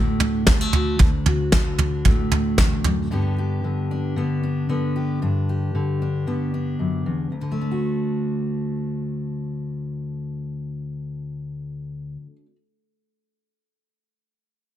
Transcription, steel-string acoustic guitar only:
0.00 0.98 D2 medium
0.00 0.47 A2 soft
0.00 0.45 D3 medium
0.00 0.46 A3 soft
0.00 0.21 D4 soft
0.00 0.73 F#4 soft
0.22 1.00 D4 soft
0.46 1.52 D3 soft
0.46 0.61 G3 soft
0.61 1.00 A3 soft
0.75 0.97 F#4 soft
1.00 2.58 D2 medium
1.00 1.80 D4 soft
1.28 3.08 F#4 soft
1.54 3.10 D3 medium
1.80 2.32 D4 soft
2.06 3.11 A2 medium
2.06 3.12 A3 soft
2.33 3.12 D4 soft
2.85 3.10 F#2 soft
3.11 5.18 G2 medium
3.11 3.63 D3 soft
3.11 4.17 B3 soft
3.11 3.91 D4 soft
3.11 3.38 G4 medium
3.38 4.95 G4 soft
3.64 4.15 D3 medium
3.91 4.43 D4 soft
4.16 4.68 D3 soft
4.16 4.68 B3 soft
4.43 5.22 D4 soft
4.69 5.74 D3 soft
4.69 5.19 B3 soft
4.96 5.19 G4 soft
5.22 6.79 G2 soft
5.22 6.01 D4 soft
5.49 7.30 G4 soft
5.75 6.26 D3 soft
6.02 6.53 D4 soft
6.27 7.29 D3 soft
6.27 7.30 B3 soft
6.54 7.30 D4 soft
6.79 7.06 F#2 soft
7.06 7.31 E2 soft
7.32 12.16 D2 soft
7.41 12.25 D3 soft
7.51 12.36 A3 soft
7.61 12.45 D4 soft
7.71 12.55 F#4 soft

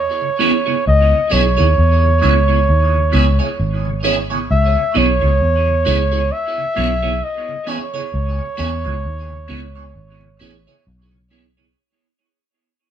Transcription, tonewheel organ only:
0.22 0.30 C#3 medium
0.40 0.52 E3 medium
0.40 0.52 B3 medium
0.40 0.52 C#4 medium
0.67 0.75 C#3 medium
1.13 1.21 C#3 medium
1.31 1.43 E3 medium
1.31 1.43 B3 medium
1.31 1.43 C#4 medium
1.58 1.66 C#3 medium
2.04 2.12 C#3 medium
2.22 2.34 E3 medium
2.22 2.34 B3 medium
2.22 2.34 C#4 medium
2.49 2.57 C#3 medium
2.94 3.02 C#3 medium
3.13 3.24 E3 medium
3.13 3.25 B3 medium
3.13 3.25 C#4 medium
3.40 3.48 C#3 medium
3.85 3.93 C#3 medium
4.04 4.16 E3 medium
4.04 4.16 B3 medium
4.04 4.16 C#4 medium
4.31 4.39 C#3 medium
4.76 4.84 C#3 medium
4.95 5.06 E3 medium
4.95 5.07 B3 medium
4.95 5.07 C#4 medium
5.22 5.30 C#3 medium
5.67 5.75 C#3 medium
5.85 5.97 E3 medium
5.85 5.97 B3 medium
5.85 5.97 C#4 medium
6.12 6.20 C#3 medium
6.58 6.66 C#3 medium
6.77 6.88 E3 medium
6.77 6.88 B3 medium
6.77 6.88 C#4 medium
7.03 7.11 C#3 medium
7.48 7.57 C#3 medium
7.67 7.79 E3 medium
7.67 7.79 B3 medium
7.67 7.79 C#4 medium
7.94 8.02 C#3 medium
8.39 8.47 C#3 medium
8.57 8.69 E3 medium
8.57 8.69 B3 medium
8.57 8.70 C#4 medium
8.85 8.93 C#3 medium
9.30 9.38 C#3 medium
9.48 9.60 E3 medium
9.48 9.60 B3 medium
9.48 9.60 C#4 medium
9.75 9.84 C#3 medium
10.21 10.29 C#3 soft
10.39 10.51 E3 medium
10.39 10.51 B3 medium
10.39 10.52 C#4 medium
10.67 10.75 C#3 medium
11.12 11.20 C#3 medium
11.31 11.42 E3 medium
11.31 11.43 B3 medium
11.31 11.43 C#4 medium
11.58 11.66 C#3 medium

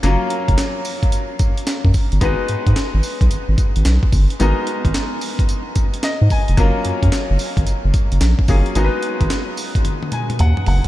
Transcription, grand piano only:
0.03 2.17 F#3 medium
0.03 2.18 A#3 medium
0.03 2.18 C#4 medium
0.03 2.18 F4 medium
0.03 2.18 A#4 medium
2.21 4.35 G#3 medium
2.21 4.36 B3 medium
2.21 4.36 D#4 medium
2.21 4.36 F#4 medium
2.21 4.37 B4 medium
4.40 6.54 G#3 medium
4.40 6.54 B3 medium
4.40 6.54 D#4 medium
4.40 6.55 F#4 medium
4.40 6.55 A#4 medium
6.04 6.29 D#5 medium
6.31 6.56 G#5 medium
6.57 8.45 F#3 medium
6.57 8.45 A#3 medium
6.57 8.45 C#4 medium
6.57 8.46 F4 medium
6.57 8.46 A#4 medium
8.49 8.76 F#3 medium
8.49 8.76 A#3 medium
8.49 8.76 C#4 medium
8.49 8.76 F4 medium
8.49 8.76 G#4 medium
8.76 10.88 G#3 medium
8.76 10.88 B3 medium
8.76 10.88 D#4 medium
8.76 10.88 F#4 medium
8.76 8.85 A#4 medium
8.85 10.88 B4 medium
10.13 10.38 G#5 medium
10.40 10.65 F#5 medium
10.68 10.88 F#5 medium

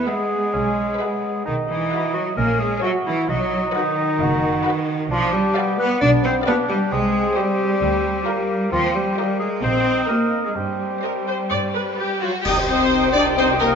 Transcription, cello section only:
0.08 1.46 G#3 medium
1.46 1.54 D#3 medium
1.69 2.14 E3 medium
2.14 2.37 F#3 medium
2.37 2.59 A#3 loud
2.60 2.83 G#3 loud
2.83 2.91 F#3 loud
3.06 3.29 E3 loud
3.29 3.74 F#3 loud
3.74 5.08 D#3 loud
5.11 5.33 F3 loud
5.33 5.79 G3 loud
5.78 6.01 B3 loud
6.01 6.09 D4 loud
6.24 6.32 C4 loud
6.47 6.55 B3 loud
6.69 6.77 G3 loud
6.92 7.36 G#3 loud
7.37 8.72 G3 medium
8.72 8.94 F3 loud
8.95 9.40 G3 loud
9.40 9.63 G#3 medium
9.63 10.09 C4 loud
10.10 10.45 A#3 medium
10.45 10.50 G#3 medium
10.56 12.18 G3 medium
12.45 13.75 C3 medium

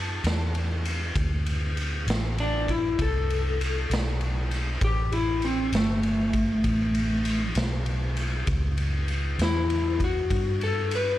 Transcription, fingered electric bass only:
0.00 0.21 F#2 medium
0.24 1.13 E2 medium
1.16 2.04 D2 medium
2.07 2.95 A1 medium
2.99 3.87 C2 medium
3.90 4.79 B1 medium
4.82 5.70 A1 medium
5.72 6.61 G1 medium
6.64 7.53 A1 medium
7.56 8.45 B1 medium
8.47 9.36 C#2 medium
9.38 10.27 E2 medium
10.31 11.19 G2 medium

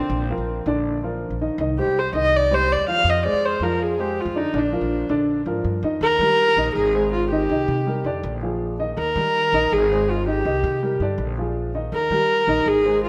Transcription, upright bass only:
0.10 0.37 A#1 loud
0.38 0.64 A#1 medium
0.66 1.28 A#1 loud
1.30 1.48 A#1 medium
1.58 1.85 C2 loud
1.86 2.12 C2 medium
2.13 2.75 C2 medium
2.78 2.96 D#2 medium
3.04 3.31 F2 loud
3.33 3.60 F2 medium
3.60 4.22 F2 medium
4.25 4.43 F2 medium
4.54 4.80 A#1 loud
4.81 5.08 A#1 medium
5.09 5.45 A#1 medium
5.46 5.63 G#2 medium
5.64 5.81 G2 medium
5.83 6.00 F2 loud
6.01 6.18 D#2 loud
6.19 6.55 D#3 medium
6.57 6.75 A#1 medium
6.75 7.46 G#1 loud
7.49 7.67 C2 medium
7.68 8.03 C3 loud
8.04 8.22 F2 medium
8.23 8.94 A#1 loud
8.97 9.15 D#2 loud
9.16 9.51 D#3 loud
9.52 9.70 A#1 medium
9.72 10.42 G#1 medium
10.45 10.63 C2 medium
10.64 10.99 C3 loud
11.00 11.17 G2 medium
11.18 11.89 A#1 loud
11.92 12.10 D#2 medium
12.10 12.46 D#3 medium
12.47 12.65 A#1 medium
12.66 13.09 G#1 medium

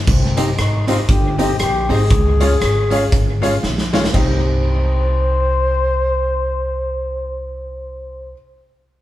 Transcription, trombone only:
0.09 0.46 C4 medium
0.50 0.58 D#4 medium
0.59 0.87 D#4 medium
0.88 0.97 F4 loud
1.08 1.37 G4 medium
1.39 1.59 G4 loud
1.60 1.92 G4 loud
1.90 3.63 G#4 loud
4.15 8.33 C5 loud

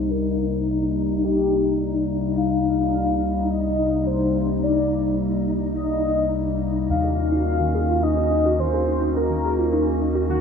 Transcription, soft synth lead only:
0.00 0.12 C5 medium
0.11 0.95 A#4 medium
1.24 2.05 G4 loud
2.37 3.52 F5 loud
3.50 4.08 D#5 loud
4.07 4.65 C5 medium
4.63 5.48 D5 medium
5.76 6.57 D#5 loud
6.90 8.04 F5 loud
8.03 8.61 D#5 loud
8.60 9.18 C5 loud
9.16 10.01 A#4 medium
10.29 10.41 F#4 loud

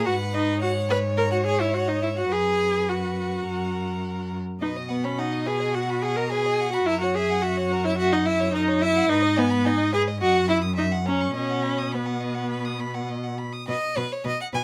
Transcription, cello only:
0.07 2.31 G#2 medium
2.31 3.45 F#2 soft
3.47 4.40 F#2 soft
4.61 6.83 B2 soft
6.86 9.06 F#2 medium
9.10 10.23 G#2 medium
10.21 11.36 F#2 medium
11.36 13.45 B2 medium
13.68 13.76 B2 medium
13.97 14.05 B2 medium
14.25 14.33 B2 medium
14.53 14.61 B2 medium

